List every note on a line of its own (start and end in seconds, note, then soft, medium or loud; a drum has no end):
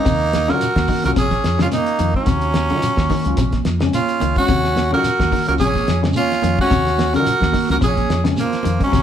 0.00 0.54 A#3 medium
0.00 0.51 D#4 loud
0.05 0.51 D#2 medium
0.05 0.24 C3 medium
0.05 kick medium
0.05 closed hi-hat medium
0.05 shekere medium
0.33 snare medium
0.33 closed hi-hat medium
0.33 high conga medium
0.33 shekere soft
0.48 0.67 C#3 medium
0.48 0.59 D#3 medium
0.48 0.63 F#3 medium
0.48 0.64 C#4 medium
0.48 0.64 F4 loud
0.48 1.04 A#4 loud
0.48 snare soft
0.53 1.06 F#4 loud
0.61 muted fingered electric bass stroke soft
0.61 closed hi-hat medium
0.61 high conga soft
0.61 low conga medium
0.61 shekere medium
0.76 0.86 D#2 medium
0.76 kick medium
0.76 snare medium
0.76 closed hi-hat soft
0.76 high conga medium
0.88 1.08 D#3 medium
0.88 kick medium
0.88 open hi-hat medium
0.88 low conga medium
0.88 shekere soft
1.03 1.15 C2 medium
1.03 1.16 F#3 medium
1.03 1.16 C#4 medium
1.03 1.17 F4 medium
1.03 1.12 F#4 medium
1.03 1.10 A#4 loud
1.03 snare soft
1.03 closed hi-hat soft
1.16 1.39 A#1 loud
1.16 1.35 C3 medium
1.16 1.58 C#4 medium
1.16 1.57 G#4 medium
1.16 kick medium
1.16 snare soft
1.16 closed hi-hat medium
1.16 shekere medium
1.31 kick medium
1.31 snare soft
1.31 closed hi-hat soft
1.44 1.67 F2 loud
1.44 snare medium
1.44 closed hi-hat medium
1.44 shekere soft
1.59 1.78 C#3 medium
1.59 1.75 G#3 medium
1.59 1.75 C4 medium
1.59 1.75 C#4 medium
1.59 1.67 C#4 medium
1.59 1.67 F4 medium
1.59 snare medium
1.59 closed hi-hat soft
1.71 2.13 A#3 medium
1.71 2.12 D#4 medium
1.71 snare soft
1.71 closed hi-hat medium
1.71 high conga medium
1.71 low conga medium
1.71 shekere medium
1.86 closed hi-hat soft
1.99 2.12 F2 medium
1.99 2.18 D#3 medium
1.99 closed hi-hat medium
1.99 high conga medium
1.99 low conga medium
1.99 shekere soft
2.14 3.35 F#3 medium
2.14 2.27 G#3 medium
2.14 2.28 C4 medium
2.14 3.63 C#4 medium
2.14 2.28 D#4 medium
2.14 kick medium
2.26 2.72 D#2 loud
2.26 2.46 C3 medium
2.26 kick medium
2.26 snare soft
2.26 closed hi-hat medium
2.26 shekere medium
2.41 closed hi-hat soft
2.54 snare medium
2.54 closed hi-hat medium
2.54 high conga medium
2.54 shekere soft
2.70 2.89 C#3 medium
2.70 2.80 D#3 medium
2.70 2.85 F#3 medium
2.70 2.86 C#4 medium
2.70 2.86 F4 medium
2.70 closed hi-hat soft
2.82 muted fingered electric bass stroke soft
2.82 closed hi-hat medium
2.82 high conga soft
2.82 low conga medium
2.82 shekere medium
2.97 3.08 D#2 medium
2.97 kick medium
2.97 snare medium
2.97 high conga medium
3.10 3.29 D#3 medium
3.10 kick medium
3.10 snare soft
3.10 open hi-hat medium
3.10 high conga medium
3.10 low conga medium
3.10 shekere soft
3.25 3.36 C#2 medium
3.25 3.38 F#3 medium
3.25 3.38 C#4 medium
3.25 3.38 F4 medium
3.25 closed hi-hat soft
3.37 3.60 A#1 loud
3.37 3.57 C3 medium
3.37 kick medium
3.37 snare soft
3.37 closed hi-hat medium
3.37 shekere medium
3.52 kick medium
3.52 snare soft
3.52 closed hi-hat soft
3.52 high conga medium
3.65 3.88 F2 medium
3.65 snare medium
3.65 closed hi-hat medium
3.65 shekere soft
3.80 4.00 C#3 medium
3.80 3.96 G#3 medium
3.80 3.97 C4 medium
3.80 3.97 C#4 medium
3.80 snare medium
3.80 closed hi-hat soft
3.93 4.34 C#4 medium
3.93 4.34 F4 medium
3.93 closed hi-hat medium
3.93 high conga medium
3.93 low conga medium
3.93 shekere medium
4.09 closed hi-hat soft
4.20 4.34 C#2 medium
4.20 4.40 D#3 medium
4.20 closed hi-hat medium
4.20 high conga medium
4.20 low conga medium
4.20 shekere soft
4.35 4.48 G#3 medium
4.35 4.49 C4 medium
4.35 4.49 C#4 medium
4.35 4.89 C#4 medium
4.35 4.89 F#4 loud
4.35 kick medium
4.35 closed hi-hat soft
4.48 4.94 D#2 medium
4.48 4.68 C3 medium
4.48 kick medium
4.48 snare soft
4.48 closed hi-hat medium
4.48 shekere medium
4.64 snare soft
4.76 snare medium
4.76 closed hi-hat soft
4.76 high conga medium
4.76 shekere soft
4.91 5.11 C#3 medium
4.91 5.03 D#3 medium
4.91 5.07 F#3 medium
4.91 5.07 C#4 medium
4.91 5.07 F4 medium
4.91 5.45 F#4 loud
4.91 5.45 A#4 loud
5.04 muted fingered electric bass stroke soft
5.04 snare soft
5.04 closed hi-hat medium
5.04 high conga soft
5.04 low conga medium
5.04 shekere medium
5.19 5.30 D#2 loud
5.19 kick medium
5.19 snare medium
5.19 closed hi-hat soft
5.19 high conga medium
5.31 5.51 D#3 medium
5.31 kick medium
5.31 open hi-hat medium
5.31 high conga medium
5.31 low conga medium
5.31 shekere soft
5.47 5.58 C#2 medium
5.47 5.60 F#3 medium
5.47 5.60 C#4 medium
5.47 5.60 F4 medium
5.47 5.54 A#4 loud
5.47 closed hi-hat soft
5.51 5.56 F#4 medium
5.58 5.83 A#1 loud
5.58 5.79 C3 medium
5.58 6.00 G#4 loud
5.58 kick medium
5.58 closed hi-hat medium
5.58 shekere medium
5.64 6.02 C#4 medium
5.73 kick medium
5.73 snare soft
5.73 closed hi-hat soft
5.73 high conga medium
5.87 6.11 F2 loud
5.87 snare medium
5.87 closed hi-hat medium
5.87 shekere soft
6.03 6.22 C#3 medium
6.03 6.18 G#3 medium
6.03 6.19 C4 medium
6.03 6.19 C#4 medium
6.03 snare medium
6.03 closed hi-hat soft
6.13 6.56 F4 loud
6.13 closed hi-hat medium
6.13 high conga medium
6.13 shekere medium
6.17 6.56 C#4 medium
6.32 snare soft
6.32 closed hi-hat soft
6.42 6.56 F2 medium
6.42 6.62 D#3 medium
6.42 closed hi-hat medium
6.42 high conga medium
6.42 low conga medium
6.42 shekere soft
6.58 6.71 G#3 medium
6.58 6.71 C4 medium
6.58 6.71 C#4 medium
6.58 7.12 C#4 medium
6.58 7.11 F#4 loud
6.58 kick medium
6.71 7.16 D#2 medium
6.71 6.90 C3 medium
6.71 kick medium
6.71 snare soft
6.71 closed hi-hat medium
6.71 shekere medium
6.87 snare soft
6.87 closed hi-hat soft
6.98 snare medium
6.98 closed hi-hat medium
6.98 high conga loud
6.98 shekere soft
7.13 7.33 C#3 medium
7.13 7.24 D#3 medium
7.13 7.29 F#3 medium
7.13 7.29 C#4 medium
7.13 7.30 F4 medium
7.13 7.67 F#4 medium
7.13 7.66 A#4 loud
7.13 snare soft
7.13 closed hi-hat soft
7.26 muted fingered electric bass stroke soft
7.26 closed hi-hat medium
7.26 high conga soft
7.26 low conga medium
7.26 shekere medium
7.40 7.52 D#2 loud
7.40 kick medium
7.40 snare medium
7.40 high conga medium
7.53 7.73 D#3 medium
7.53 kick medium
7.53 snare soft
7.53 open hi-hat medium
7.53 high conga medium
7.53 low conga medium
7.53 shekere soft
7.69 7.80 C#2 medium
7.69 7.82 F#3 medium
7.69 7.82 C#4 medium
7.69 7.82 F4 medium
7.69 7.77 F#4 medium
7.69 7.77 A#4 loud
7.69 snare soft
7.69 closed hi-hat soft
7.81 8.05 A#1 loud
7.81 8.00 C3 medium
7.81 8.23 G#4 medium
7.81 kick medium
7.81 closed hi-hat medium
7.81 shekere medium
7.86 8.24 C#4 medium
7.95 kick medium
7.95 closed hi-hat soft
7.95 high conga medium
8.10 8.32 F2 medium
8.10 snare medium
8.10 closed hi-hat medium
8.10 shekere soft
8.24 8.43 C#3 medium
8.24 8.40 G#3 medium
8.24 8.40 C4 medium
8.24 8.41 C#4 medium
8.24 snare medium
8.24 closed hi-hat soft
8.36 8.79 A#3 medium
8.36 snare soft
8.36 closed hi-hat medium
8.36 high conga medium
8.36 low conga medium
8.36 shekere medium
8.42 8.80 F3 medium
8.53 snare soft
8.53 closed hi-hat soft
8.63 8.78 F2 medium
8.63 8.84 D#3 medium
8.63 closed hi-hat medium
8.63 high conga medium
8.63 low conga medium
8.63 shekere soft
8.79 8.92 G#3 medium
8.79 8.93 C4 medium
8.79 8.93 C#4 loud
8.79 kick medium
8.79 closed hi-hat soft
8.83 9.03 F#3 medium
8.83 9.03 C#4 loud
8.92 9.03 D#2 loud
8.92 9.03 C3 medium
8.92 kick medium
8.92 closed hi-hat medium
8.92 shekere medium